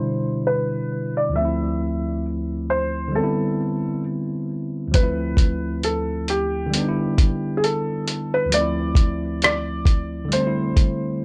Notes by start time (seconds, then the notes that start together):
Already playing: B2 D3 G3 D4 E4 C5
0.47 B4
1.17 D5
1.29 D2 F3
1.36 A3 E5
1.41 C4 E4
2.70 C5
3.08 D3 G3
3.15 B3 A4
3.20 C4 E4
4.88 D2 F3
4.94 A3 B4, kick, closed hi-hat
4.99 C4
5.03 E4
5.37 kick, closed hi-hat
5.83 A4, closed hi-hat
6.28 G4, closed hi-hat
6.66 D3 G3
6.74 B3, closed hi-hat
6.78 D4 D#4
6.88 E4
7.18 kick, closed hi-hat
7.57 G#4
7.64 A4, closed hi-hat
8.08 closed hi-hat
8.34 B4
8.46 D2 F3
8.52 A3 D5, closed hi-hat
8.57 C4 E4
8.95 kick, closed hi-hat
9.42 D5, cross-stick, closed hi-hat
9.85 kick, closed hi-hat
10.25 D3 G3
10.32 A3 C5, closed hi-hat
10.36 C4 D4
10.47 E4
10.76 kick, closed hi-hat